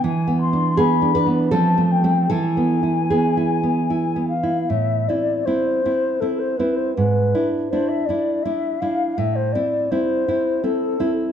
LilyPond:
<<
  \new Staff \with { instrumentName = "Flute" } { \time 3/4 \key a \minor \tempo 4 = 80 gis''8 c'''8 b''8 r8 a''8 g''8 | gis''2~ gis''8 f''8 | e''8 d''8 c''4 a'16 c''16 b'16 c''16 | b'4 c''16 e''16 d''8 e''8 f''8 |
e''16 c''16 d''8 c''4 a'8. r16 | }
  \new Staff \with { instrumentName = "Nylon-string guitar" } { \time 3/4 \key a \minor << { r4 <b gis'>8 <d' b'>8 <c' a'>4 | <e' a'>4 <b gis'>4. r8 | r2. | r2. |
r2. | } \\ { \tuplet 3/2 { e8 b8 d'8~ d'8 d'8 b8 f8 a8 <a c'>8 } | \tuplet 3/2 { e8 b8 e'8~ e'8 e'8 b8 e'8 b8 e'8 } | a,8 <c' e'>8 <c' e'>8 <c' e'>8 <c' e'>8 <c' e'>8 | gis,8 <d' e'>8 <d' e'>8 <d' e'>8 <d' e'>8 <d' e'>8 |
a,8 <c' e'>8 <c' e'>8 <c' e'>8 <c' e'>8 <c' e'>8 | } >> }
>>